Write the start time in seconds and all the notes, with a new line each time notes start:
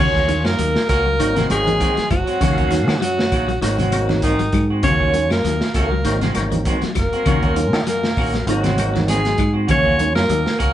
Already playing: C#4
0.00 D#2 C#3 F#3 A#3 C#4 F4 F#4 C#5
0.15 A#3 C#4, kick, snare
0.28 D#3, muted clean electric guitar stroke, closed hi-hat, high conga
0.45 F#2 A#3 A#4, muted clean electric guitar stroke, snare, claves
0.59 D#2 F#3, closed hi-hat
0.76 muted clean electric guitar stroke, snare
0.88 C#2 A#3 C#4 F#4 A#4, kick, snare, closed hi-hat, claves
1.06 F#3, muted clean electric guitar stroke
1.19 G#1 D#3 F#3 A#3 C4 D#4, muted clean electric guitar stroke, closed hi-hat, high conga
1.36 C3 D#3 G#3 C4 F#4, snare, closed hi-hat, high conga, low conga
1.50 G#1 F#3 G#3 A#3 C4 D#4 G#4, muted clean electric guitar stroke, closed hi-hat, high conga, claves
1.67 D#3, closed hi-hat, low conga
1.80 D#3 G#3 C4 F#4, kick, closed hi-hat, high conga
1.96 F#3, muted clean electric guitar stroke, muted fingered electric bass stroke, snare, closed hi-hat
2.10 F#1 F#3 F#4, muted clean electric guitar stroke, kick, closed hi-hat, claves
2.26 G#3 C4 F#4, closed hi-hat
2.41 D#2 C#3 D#3 F#3 A#3 C#4 F#4 F5, kick, closed hi-hat, high conga, low conga, claves
2.57 D#3 A#3 C#4 F#4, kick, closed hi-hat
2.71 D#3, muted clean electric guitar stroke, snare, closed hi-hat, high conga
2.87 D#3, muted clean electric guitar stroke, snare, high conga, claves
3.01 F#2 F#3 F#4, closed hi-hat, high conga
3.18 muted clean electric guitar stroke, snare
3.32 A#1 D#3 A#3 F#4, kick, closed hi-hat, claves
3.48 F#3, muted clean electric guitar stroke, closed hi-hat
3.62 G#1 D#3 F#3 A#3 C4 D#4 F#4, muted clean electric guitar stroke, snare, closed hi-hat
3.78 C3 D#3 G#3 C4 F#4, closed hi-hat, high conga, low conga
3.92 F#3 A#3 C4 D#4, muted clean electric guitar stroke, closed hi-hat, high conga, claves
4.09 D#3, snare, low conga
4.22 D#3 G#3 C4 D#4 F#4, kick, closed hi-hat, high conga
4.39 F#3, muted clean electric guitar stroke, closed hi-hat
4.52 G#2 F#3, muted clean electric guitar stroke, kick, closed hi-hat, claves
4.70 G#3 C4 F#4
4.83 D#2 C#3 D#3 F#3 A#3 C#4 F4 F#4 C#5, kick, closed hi-hat, high conga, low conga, claves
5.00 D#3 A#3 C#4 F#4, kick
5.14 D#3, muted clean electric guitar stroke, closed hi-hat, high conga
5.30 F#2 A#3 A#4, muted clean electric guitar stroke, snare, claves
5.44 D#2 F#3, snare, closed hi-hat
5.61 muted clean electric guitar stroke, snare
5.74 C#2 D#3 A#3 C#4 F#4 A#4, kick, snare, closed hi-hat, claves
5.91 F#3, muted clean electric guitar stroke
6.04 G#1 D#3 F#3 A#3 C4 D#4, muted clean electric guitar stroke, snare, closed hi-hat
6.21 C3 D#3 G#3 C4 F#4, snare, closed hi-hat, high conga, low conga
6.35 G#1 F#3 A#3 C4 D#4, muted clean electric guitar stroke, snare, closed hi-hat, high conga, claves
6.52 D#3, closed hi-hat, high conga, low conga
6.65 D#3 G#3 C4 F#4, kick, closed hi-hat, high conga
6.82 F#3, muted fingered electric bass stroke, muted clean electric guitar stroke, snare, closed hi-hat
6.95 F#1 F#3 A#3 A#4, muted clean electric guitar stroke, kick, snare, closed hi-hat, claves
7.12 G#3 C4 F#4, muted fingered electric bass stroke, closed hi-hat
7.26 D#2 C#3 D#3 F#3 A#3 C#4 F4 F#4, kick, closed hi-hat, high conga, low conga, claves
7.42 D#3 A#3 C#4 F#4, kick, closed hi-hat
7.56 D#3, muted clean electric guitar stroke, closed hi-hat, high conga
7.73 D#3, muted clean electric guitar stroke, snare, high conga, claves
7.87 F#2 F#3 A#3 A#4, snare, closed hi-hat, high conga
8.03 muted clean electric guitar stroke, snare
8.17 A#1 D#3 A#3 C#4 F#4, kick, open hi-hat, claves
8.33 F#3, muted clean electric guitar stroke, snare, closed hi-hat
8.47 G#1 D#3 F#3 A#3 C4 D#4 F#4, muted clean electric guitar stroke, closed hi-hat, high conga
8.63 C3 D#3 G#3 C4 F#4, snare, closed hi-hat, high conga, low conga
8.78 F#3 A#3 C4 D#4, muted clean electric guitar stroke, closed hi-hat, high conga, claves
8.95 D#3, snare, high conga, low conga
9.07 D#3 G#3 C4 F#4 G#4, snare, closed hi-hat, high conga
9.24 F#3, muted clean electric guitar stroke, snare, closed hi-hat
9.37 G#2 F#3, muted clean electric guitar stroke, kick, closed hi-hat, claves
9.54 G#3 C4 F#4
9.67 D#2 C#3 F#3 A#3 C#4 F#4 C#5, kick, closed hi-hat, high conga, low conga, claves
9.71 F4
9.84 A#3 C#4 F#4, kick
9.97 D#3, muted clean electric guitar stroke, closed hi-hat, high conga
10.15 F#2 A#3 A#4, muted clean electric guitar stroke, snare, high conga, claves
10.29 D#2 F#3, closed hi-hat, high conga
10.45 muted clean electric guitar stroke, snare
10.58 C#2 A#3 C#4 F#4 A#4, kick, closed hi-hat, claves